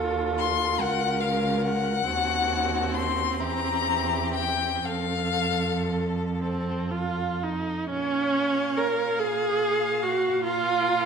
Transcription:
Already playing: cello D#2, viola F4, violin A4
0.38 violin C6
0.78 cello C#2, violin A#4 F#5
1.20 violin F5
1.61 violin F#5
2.05 cello D#2, viola C4, violin F#4
2.95 violin C6
3.39 cello E2, violin G4 A#5
4.34 violin G5
4.84 cello F2, violin A4 F5
6.40 viola C4
6.92 viola F4
7.43 viola D#4
7.89 cello A#2, viola C#4, violin C#5 F5
8.78 viola A#4
9.20 viola G#4, violin F5
10.03 viola F#4
10.44 viola F4, violin F5 A#5

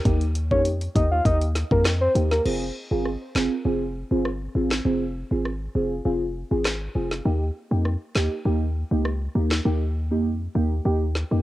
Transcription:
0.05 808-style bass D#2, synth stab A#3 D#4 G4, kick, closed hi-hat
0.21 closed hi-hat
0.35 closed hi-hat
0.51 808-style bass F2, synth stab A#3 D#4 G4, soft synth lead C#5, kick
0.65 closed hi-hat
0.81 closed hi-hat
0.95 808-style bass D#2, synth stab A#3 D#4 G4, soft synth lead D#5, kick, closed hi-hat
1.11 soft synth lead F5
1.25 808-style bass D#2, synth stab A#3 D#4 G4, soft synth lead D#5, kick, closed hi-hat
1.41 closed hi-hat
1.55 snare, closed hi-hat
1.71 808-style bass F2, synth stab A#3 D#4 G4, soft synth lead A#4, kick
1.85 cross-stick, snare, clap, closed hi-hat
2.01 soft synth lead C5
2.15 808-style bass D#2, synth stab A#3 D#4 G4, closed hi-hat
2.31 soft synth lead A#4, snare
2.45 808-style bass F1, synth stab C4 F4 G#4, crash
2.91 808-style bass G1, synth stab C4 F4 G#4
3.05 cross-stick
3.35 808-style bass F1, synth stab C4 F4 G#4, snare, clap
3.65 808-style bass F1, synth stab C4 F4 G#4
4.11 808-style bass G1, synth stab C4 F4 G#4
4.25 cross-stick
4.55 808-style bass G#1, synth stab C4 F4 G#4
4.71 snare, clap
4.85 808-style bass F1, synth stab C4 F4 G#4
5.31 808-style bass G#1, synth stab C4 F4 G#4
5.45 cross-stick
5.75 808-style bass F1, synth stab C4 F4 G#4
6.05 808-style bass F1, synth stab C4 F4 G#4
6.51 808-style bass G#1, synth stab C4 F4 G#4
6.65 cross-stick, snare, clap
6.95 808-style bass F1, synth stab C4 F4 G#4
7.11 snare
7.25 808-style bass D#2, synth stab A#3 D#4 G4
7.71 808-style bass F2, synth stab A#3 D#4 G4
7.85 cross-stick
8.15 808-style bass D#2, synth stab A#3 D#4 G4, snare, clap
8.45 808-style bass D#2, synth stab A#3 D#4 G4
8.91 808-style bass C#2, synth stab A#3 D#4 G4
9.05 cross-stick
9.35 808-style bass D#2, synth stab A#3 D#4 G4
9.51 snare, clap
9.65 808-style bass D#2, synth stab A#3 D#4 G4
10.11 808-style bass F2, synth stab A#3 D#4 G4
10.55 808-style bass D#2, synth stab A#3 D#4 G4
10.85 808-style bass D#2, synth stab A#3 D#4 G4
11.15 snare
11.31 808-style bass F2, synth stab A#3 D#4 G4

